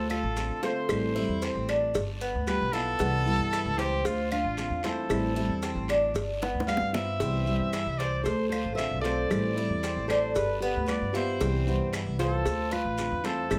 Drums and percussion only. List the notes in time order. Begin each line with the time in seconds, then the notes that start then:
0.10 claves, maracas
0.37 cowbell, short guiro, maracas
0.63 cowbell, short guiro, maracas
0.89 cowbell, long guiro, claves, maracas
1.17 maracas
1.42 cowbell, short guiro, maracas
1.69 cowbell, short guiro, claves, maracas
1.94 cowbell, long guiro, maracas
2.22 maracas
2.47 cowbell, short guiro, claves, maracas
2.73 short guiro, maracas
3.00 cowbell, long guiro, maracas
3.27 maracas
3.53 cowbell, short guiro, claves, maracas
3.78 cowbell, short guiro, maracas
4.05 cowbell, long guiro, maracas
4.32 claves, maracas
4.57 cowbell, short guiro, maracas
4.83 cowbell, short guiro, maracas
5.09 cowbell, long guiro, claves, maracas
5.36 maracas
5.62 cowbell, short guiro, maracas
5.88 cowbell, short guiro, claves, maracas
6.14 cowbell, long guiro, maracas
6.42 high bongo, maracas
6.60 high bongo
6.67 cowbell, short guiro, claves, maracas
6.77 low bongo
6.94 low bongo, short guiro, maracas
7.20 cowbell, long guiro, maracas
7.47 maracas
7.73 cowbell, short guiro, claves, maracas
7.99 cowbell, short guiro, maracas
8.25 cowbell, long guiro, maracas
8.52 claves, maracas
8.77 cowbell, short guiro, maracas
9.04 cowbell, short guiro, maracas
9.30 cowbell, long guiro, claves, maracas
9.57 maracas
9.83 cowbell, short guiro, maracas
10.09 cowbell, short guiro, claves, maracas
10.35 cowbell, long guiro, maracas
10.63 maracas
10.88 cowbell, short guiro, claves, maracas
11.14 short guiro, maracas
11.40 cowbell, long guiro, maracas
11.68 maracas
11.93 cowbell, short guiro, claves, maracas
12.19 cowbell, short guiro, maracas
12.46 cowbell, long guiro, maracas
12.72 claves, maracas
12.98 cowbell, short guiro, maracas
13.24 cowbell, short guiro, maracas
13.50 cowbell, long guiro, claves, maracas